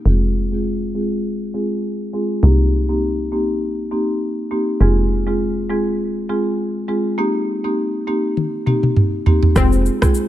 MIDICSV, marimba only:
0, 0, Header, 1, 2, 480
1, 0, Start_track
1, 0, Key_signature, -4, "minor"
1, 0, Tempo, 594059
1, 44, Time_signature, 4, 2, 24, 8
1, 8307, End_track
2, 0, Start_track
2, 0, Title_t, "Marimba"
2, 0, Program_c, 0, 12
2, 44, Note_on_c, 0, 56, 88
2, 46, Note_on_c, 0, 60, 77
2, 47, Note_on_c, 0, 65, 81
2, 49, Note_on_c, 0, 68, 94
2, 220, Note_off_c, 0, 56, 0
2, 221, Note_off_c, 0, 60, 0
2, 221, Note_off_c, 0, 65, 0
2, 223, Note_off_c, 0, 68, 0
2, 417, Note_on_c, 0, 56, 72
2, 418, Note_on_c, 0, 60, 65
2, 420, Note_on_c, 0, 65, 67
2, 421, Note_on_c, 0, 68, 75
2, 578, Note_off_c, 0, 56, 0
2, 579, Note_off_c, 0, 60, 0
2, 579, Note_off_c, 0, 65, 0
2, 580, Note_off_c, 0, 68, 0
2, 764, Note_on_c, 0, 56, 74
2, 766, Note_on_c, 0, 60, 68
2, 768, Note_on_c, 0, 65, 67
2, 770, Note_on_c, 0, 68, 81
2, 940, Note_off_c, 0, 56, 0
2, 941, Note_off_c, 0, 60, 0
2, 942, Note_off_c, 0, 65, 0
2, 943, Note_off_c, 0, 68, 0
2, 1242, Note_on_c, 0, 56, 68
2, 1245, Note_on_c, 0, 60, 66
2, 1247, Note_on_c, 0, 65, 62
2, 1249, Note_on_c, 0, 68, 80
2, 1419, Note_off_c, 0, 56, 0
2, 1420, Note_off_c, 0, 60, 0
2, 1421, Note_off_c, 0, 65, 0
2, 1422, Note_off_c, 0, 68, 0
2, 1724, Note_on_c, 0, 56, 69
2, 1726, Note_on_c, 0, 60, 61
2, 1727, Note_on_c, 0, 65, 62
2, 1729, Note_on_c, 0, 68, 75
2, 1947, Note_off_c, 0, 56, 0
2, 1948, Note_off_c, 0, 60, 0
2, 1948, Note_off_c, 0, 65, 0
2, 1949, Note_off_c, 0, 68, 0
2, 1964, Note_on_c, 0, 58, 89
2, 1965, Note_on_c, 0, 60, 81
2, 1967, Note_on_c, 0, 63, 83
2, 1969, Note_on_c, 0, 67, 97
2, 2140, Note_off_c, 0, 58, 0
2, 2141, Note_off_c, 0, 60, 0
2, 2141, Note_off_c, 0, 63, 0
2, 2142, Note_off_c, 0, 67, 0
2, 2336, Note_on_c, 0, 58, 69
2, 2337, Note_on_c, 0, 60, 68
2, 2339, Note_on_c, 0, 63, 68
2, 2340, Note_on_c, 0, 67, 81
2, 2498, Note_off_c, 0, 58, 0
2, 2498, Note_off_c, 0, 60, 0
2, 2499, Note_off_c, 0, 63, 0
2, 2500, Note_off_c, 0, 67, 0
2, 2683, Note_on_c, 0, 58, 74
2, 2685, Note_on_c, 0, 60, 67
2, 2686, Note_on_c, 0, 63, 65
2, 2687, Note_on_c, 0, 67, 84
2, 2859, Note_off_c, 0, 58, 0
2, 2861, Note_off_c, 0, 60, 0
2, 2861, Note_off_c, 0, 63, 0
2, 2862, Note_off_c, 0, 67, 0
2, 3162, Note_on_c, 0, 58, 72
2, 3163, Note_on_c, 0, 60, 66
2, 3165, Note_on_c, 0, 63, 69
2, 3166, Note_on_c, 0, 67, 80
2, 3339, Note_off_c, 0, 58, 0
2, 3340, Note_off_c, 0, 60, 0
2, 3340, Note_off_c, 0, 63, 0
2, 3341, Note_off_c, 0, 67, 0
2, 3643, Note_on_c, 0, 58, 72
2, 3645, Note_on_c, 0, 60, 65
2, 3646, Note_on_c, 0, 63, 66
2, 3647, Note_on_c, 0, 67, 77
2, 3867, Note_off_c, 0, 58, 0
2, 3867, Note_off_c, 0, 60, 0
2, 3868, Note_off_c, 0, 63, 0
2, 3869, Note_off_c, 0, 67, 0
2, 3884, Note_on_c, 0, 56, 82
2, 3886, Note_on_c, 0, 60, 82
2, 3888, Note_on_c, 0, 65, 82
2, 3888, Note_on_c, 0, 68, 97
2, 4060, Note_off_c, 0, 56, 0
2, 4061, Note_off_c, 0, 60, 0
2, 4062, Note_off_c, 0, 65, 0
2, 4062, Note_off_c, 0, 68, 0
2, 4255, Note_on_c, 0, 56, 74
2, 4257, Note_on_c, 0, 60, 64
2, 4259, Note_on_c, 0, 65, 64
2, 4261, Note_on_c, 0, 68, 79
2, 4417, Note_off_c, 0, 56, 0
2, 4418, Note_off_c, 0, 60, 0
2, 4419, Note_off_c, 0, 65, 0
2, 4420, Note_off_c, 0, 68, 0
2, 4604, Note_on_c, 0, 56, 74
2, 4605, Note_on_c, 0, 60, 67
2, 4607, Note_on_c, 0, 65, 73
2, 4608, Note_on_c, 0, 68, 83
2, 4780, Note_off_c, 0, 56, 0
2, 4781, Note_off_c, 0, 60, 0
2, 4781, Note_off_c, 0, 65, 0
2, 4782, Note_off_c, 0, 68, 0
2, 5084, Note_on_c, 0, 56, 74
2, 5085, Note_on_c, 0, 60, 68
2, 5087, Note_on_c, 0, 65, 67
2, 5087, Note_on_c, 0, 68, 82
2, 5260, Note_off_c, 0, 56, 0
2, 5260, Note_off_c, 0, 60, 0
2, 5261, Note_off_c, 0, 65, 0
2, 5262, Note_off_c, 0, 68, 0
2, 5561, Note_on_c, 0, 56, 71
2, 5563, Note_on_c, 0, 60, 67
2, 5564, Note_on_c, 0, 65, 65
2, 5566, Note_on_c, 0, 68, 75
2, 5786, Note_off_c, 0, 56, 0
2, 5786, Note_off_c, 0, 60, 0
2, 5787, Note_off_c, 0, 65, 0
2, 5788, Note_off_c, 0, 68, 0
2, 5800, Note_on_c, 0, 58, 87
2, 5803, Note_on_c, 0, 60, 78
2, 5804, Note_on_c, 0, 63, 82
2, 5807, Note_on_c, 0, 67, 99
2, 5978, Note_off_c, 0, 58, 0
2, 5980, Note_off_c, 0, 60, 0
2, 5980, Note_off_c, 0, 63, 0
2, 5981, Note_off_c, 0, 67, 0
2, 6175, Note_on_c, 0, 58, 69
2, 6176, Note_on_c, 0, 60, 68
2, 6177, Note_on_c, 0, 63, 65
2, 6179, Note_on_c, 0, 67, 78
2, 6337, Note_off_c, 0, 58, 0
2, 6338, Note_off_c, 0, 60, 0
2, 6338, Note_off_c, 0, 63, 0
2, 6339, Note_off_c, 0, 67, 0
2, 6523, Note_on_c, 0, 58, 75
2, 6523, Note_on_c, 0, 60, 66
2, 6526, Note_on_c, 0, 63, 68
2, 6527, Note_on_c, 0, 67, 86
2, 6699, Note_off_c, 0, 58, 0
2, 6700, Note_off_c, 0, 60, 0
2, 6701, Note_off_c, 0, 63, 0
2, 6701, Note_off_c, 0, 67, 0
2, 7003, Note_on_c, 0, 58, 74
2, 7004, Note_on_c, 0, 60, 66
2, 7006, Note_on_c, 0, 63, 68
2, 7007, Note_on_c, 0, 67, 79
2, 7179, Note_off_c, 0, 58, 0
2, 7180, Note_off_c, 0, 60, 0
2, 7181, Note_off_c, 0, 63, 0
2, 7182, Note_off_c, 0, 67, 0
2, 7483, Note_on_c, 0, 58, 69
2, 7485, Note_on_c, 0, 60, 64
2, 7487, Note_on_c, 0, 63, 63
2, 7488, Note_on_c, 0, 67, 80
2, 7706, Note_off_c, 0, 58, 0
2, 7708, Note_off_c, 0, 60, 0
2, 7708, Note_off_c, 0, 63, 0
2, 7709, Note_off_c, 0, 67, 0
2, 7722, Note_on_c, 0, 56, 92
2, 7724, Note_on_c, 0, 60, 85
2, 7725, Note_on_c, 0, 65, 86
2, 7727, Note_on_c, 0, 68, 103
2, 7899, Note_off_c, 0, 56, 0
2, 7900, Note_off_c, 0, 60, 0
2, 7901, Note_off_c, 0, 65, 0
2, 7902, Note_off_c, 0, 68, 0
2, 8092, Note_on_c, 0, 56, 74
2, 8095, Note_on_c, 0, 60, 71
2, 8096, Note_on_c, 0, 65, 71
2, 8097, Note_on_c, 0, 68, 86
2, 8256, Note_off_c, 0, 56, 0
2, 8257, Note_off_c, 0, 60, 0
2, 8258, Note_off_c, 0, 65, 0
2, 8258, Note_off_c, 0, 68, 0
2, 8307, End_track
0, 0, End_of_file